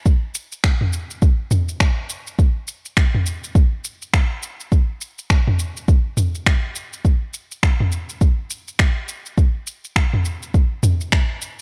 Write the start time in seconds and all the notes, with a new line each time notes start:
0.06 kick, shaker
0.35 shaker
0.52 shaker
0.64 finger snap, kick, shaker
0.81 mid tom
0.93 shaker
1.10 shaker
1.22 kick, shaker
1.51 mid tom, shaker
1.69 shaker
1.80 finger snap, kick, shaker
2.09 shaker
2.27 shaker
2.39 kick, shaker
2.68 shaker
2.85 shaker
2.97 finger snap, kick, shaker
3.15 mid tom
3.26 shaker
3.44 shaker
3.55 kick, shaker
3.84 shaker
4.02 shaker
4.14 finger snap, kick, shaker
4.43 shaker
4.60 shaker
4.72 kick, shaker
5.01 shaker
5.18 shaker
5.30 finger snap, kick, shaker
5.48 mid tom
5.59 shaker
5.77 shaker
5.88 kick, shaker
6.17 mid tom, shaker
6.35 shaker
6.46 finger snap, kick, shaker
6.75 shaker
6.93 shaker
7.05 kick, shaker
7.34 shaker
7.51 shaker
7.63 finger snap, kick, shaker
7.80 mid tom
7.92 shaker
8.09 shaker
8.21 kick, shaker
8.50 shaker
8.68 shaker
8.79 finger snap, kick, shaker
9.08 shaker
9.26 shaker
9.38 kick, shaker
9.67 shaker
9.85 shaker
9.96 finger snap, kick, shaker
10.14 mid tom
10.25 shaker
10.43 shaker
10.54 kick, shaker
10.83 mid tom, shaker
11.01 shaker
11.12 finger snap, kick, shaker
11.42 shaker